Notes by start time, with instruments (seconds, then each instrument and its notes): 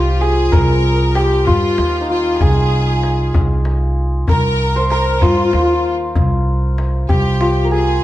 Already playing: upright bass C2, santur C4 D#4 F4 G4, violin section F4
0.21 santur G#4, violin section G#4
0.52 upright bass C2, santur A#4, violin section A#4, tombak dum
1.15 santur G4, violin section G4, tombak tek
1.47 upright bass G2, santur F4, violin section F4, tombak dum
1.78 upright bass D#2, tombak tek
2.01 santur D#4
2.09 santur F4, violin section F4
2.41 upright bass C2, violin section G#4, santur G#4, tombak dum
3.03 tombak tek
3.34 upright bass C2, tombak dum
3.65 tombak tek
4.28 upright bass C2, violin section A#4, santur A#4, tombak dum
4.76 santur C5
4.90 violin section A#4, santur A#4, tombak tek
5.22 upright bass G2, santur F4, violin section F4, tombak dum
5.29 santur F4
5.37 santur F4
5.45 santur F4
5.51 upright bass D#2, santur F4, tombak tek
5.59 santur F4
5.67 santur F4
5.74 santur F4
6.16 upright bass C2, tombak dum
6.78 tombak tek
7.09 upright bass C2, santur G4, violin section G4, tombak dum
7.41 santur F4, tombak tek
7.64 santur A#4
7.71 santur G#4, violin section G#4